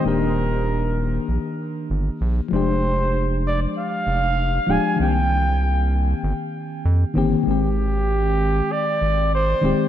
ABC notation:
X:1
M:4/4
L:1/8
Q:"Swing 16ths" 1/4=97
K:Fdor
V:1 name="Flugelhorn"
B4 z4 | c3 d f3 a | g4 z4 | G4 d2 c2 |]
V:2 name="FM electric piano"
[E,B,DG]6- [E,B,DG] z | [F,A,DG]6- [F,A,DG] [F,A,DG] | [E,B,CG]6- [E,B,CG] [E,B,CG] | [E,A,CG]6- [E,A,CG] [E,A,CG] |]
V:3 name="Analog synth bass" clef=bass
E,,,4 B,,, z G,,, B,,, | F,,,4 z F,,,2 D,,, | C,,4 G,,, z F,, G,,, | A,,,4 z A,,,2 E,,, |]